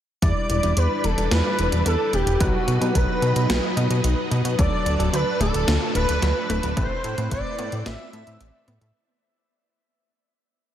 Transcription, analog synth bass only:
0.22 0.33 E2 loud
0.50 0.60 E1 loud
0.63 0.74 E1 medium
0.77 0.87 E2 medium
1.04 1.14 E1 loud
1.18 1.28 E1 medium
1.31 1.42 E2 medium
1.58 1.69 E1 medium
1.72 1.82 E1 medium
1.86 1.96 E2 medium
2.13 2.23 E1 medium
2.26 2.37 E1 loud
2.40 2.51 B1 medium
2.67 2.78 B2 loud
2.81 2.92 B2 medium
2.95 3.05 B1 medium
3.22 3.33 B2 loud
3.36 3.46 B2 medium
3.49 3.60 B1 medium
3.77 3.87 B2 loud
3.90 4.01 B2 medium
4.04 4.15 B1 medium
4.31 4.42 B2 medium
4.45 4.55 B2 medium
4.59 4.69 D2 loud
4.86 4.96 D1 loud
4.99 5.10 D1 medium
5.13 5.23 D2 medium
5.40 5.51 D1 loud
5.54 5.64 D1 medium
5.67 5.78 D2 medium
5.95 6.05 D1 medium
6.09 6.19 D1 medium
6.22 6.33 D2 medium
6.49 6.60 D1 medium
6.63 6.74 D1 loud
6.77 6.87 A1 medium
7.04 7.15 A2 loud
7.18 7.28 A2 medium
7.31 7.42 A1 medium
7.59 7.69 A2 loud
7.72 7.83 A2 medium
7.86 7.96 A1 medium
8.13 8.24 A2 loud
8.27 8.37 A2 medium
8.40 8.51 A1 medium
8.68 8.78 A2 medium
8.81 8.92 A2 medium

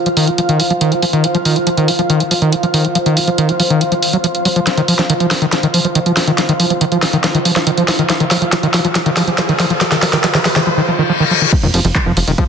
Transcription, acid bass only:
0.06 0.08 F3 medium
0.17 0.29 D#3 loud
0.27 0.30 F#3 medium
0.38 0.41 F3 medium
0.49 0.61 D#3 loud
0.60 0.62 F#3 medium
0.70 0.73 F3 medium
0.81 0.93 D#3 loud
0.92 0.94 F#3 medium
1.02 1.05 F3 medium
1.13 1.25 D#3 loud
1.24 1.26 F#3 medium
1.35 1.37 F3 medium
1.45 1.58 D#3 loud
1.56 1.58 F#3 medium
1.67 1.69 F3 medium
1.77 1.90 D#3 loud
1.88 1.91 F#3 medium
1.99 2.01 F3 medium
2.10 2.22 D#3 loud
2.20 2.23 F#3 medium
2.31 2.33 F3 medium
2.42 2.54 D#3 loud
2.52 2.55 F#3 medium
2.63 2.66 F3 medium
2.74 2.86 D#3 loud
2.85 2.87 F#3 medium
2.95 2.98 F3 medium
3.06 3.18 D#3 loud
3.17 3.19 F#3 medium
3.27 3.30 F3 medium
3.38 3.50 D#3 loud
3.49 3.51 F#3 medium
3.60 3.62 F3 medium
3.70 3.83 D#3 loud
3.81 3.83 F#3 medium
3.92 3.94 F3 medium
4.13 4.17 F#3 medium
4.24 4.26 F3 medium
4.45 4.48 F#3 medium
4.56 4.60 F3 medium
4.67 4.69 F3 medium
4.77 4.82 D#3 loud
4.88 4.94 F3 medium
4.99 5.01 F3 medium
5.10 5.14 D#3 loud
5.20 5.26 F3 medium
5.31 5.33 F3 medium
5.42 5.46 D#3 loud
5.52 5.55 F3 medium
5.63 5.67 D#3 medium
5.74 5.80 F3 medium
5.85 5.87 F3 medium
5.95 5.99 D#3 medium
6.06 6.12 F3 medium
6.17 6.19 F3 medium
6.27 6.31 D#3 loud
6.38 6.41 F3 medium
6.49 6.53 D#3 loud
6.60 6.66 F3 medium
6.70 6.73 F3 medium
6.81 6.85 D#3 loud
6.92 6.98 F3 medium
7.02 7.05 F3 medium
7.13 7.17 D#3 medium
7.24 7.26 F3 medium
7.35 7.39 D#3 loud
7.45 7.51 F3 medium
7.56 7.58 F3 medium
7.67 7.71 D#3 medium
7.78 7.84 F3 medium
7.88 7.91 F3 medium
7.99 8.03 D#3 loud
8.10 8.12 F3 medium
8.20 8.24 D#3 loud
8.31 8.37 F3 medium
8.42 8.44 F3 medium
8.52 8.55 F3 medium
8.63 8.67 D#3 loud
8.74 8.80 F3 medium
8.85 8.87 F3 medium
8.95 8.98 F3 medium
9.06 9.10 D#3 loud
9.17 9.23 F3 medium
9.28 9.30 F3 medium
9.38 9.41 F3 medium
9.49 9.53 D#3 loud
9.60 9.66 F3 medium
9.70 9.73 F3 medium
9.81 9.83 F3 medium
9.92 9.96 D#3 loud
10.02 10.05 F3 medium
10.13 10.17 D#3 loud
10.24 10.26 F3 medium
10.35 10.39 D#3 loud
10.45 10.48 F3 medium
10.56 10.60 D#3 loud
10.67 10.69 F3 medium
10.77 10.81 D#3 loud
10.88 10.91 F3 medium
10.99 11.03 D#3 loud
11.10 11.12 F3 medium
11.20 11.24 D#3 loud
11.31 11.33 F3 medium
11.42 11.46 D#3 loud
11.52 11.55 F3 medium
11.63 11.67 D#3 loud
11.74 11.80 F3 medium
11.85 11.87 F3 medium
11.95 11.99 D#3 loud
12.06 12.12 F3 medium
12.17 12.19 F3 medium
12.28 12.32 D#3 loud
12.38 12.44 F3 medium

